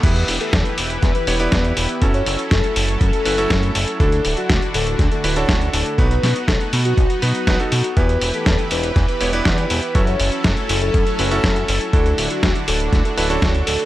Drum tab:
CC |x---------------|----------------|----------------|----------------|
HH |xxoxxxoxxxoxxxox|xxoxxxoxxxoxxxox|xxoxxxoxxxoxxxox|xxoxxxoxxxoxxxox|
SD |----o---o---o---|----o-------o---|----o---o---o---|--o-o-------o---|
BD |o---o---o---o---|o---o---o---o---|o---o---o---o---|o---o---o---o---|

CC |----------------|----------------|----------------|
HH |xxoxxxoxxxoxxxox|xxoxxxoxxxoxxxox|xxoxxxoxxxoxxxox|
SD |----o---o---o---|----o-------o---|----o---o---o---|
BD |o---o---o---o---|o---o---o---o---|o---o---o---o---|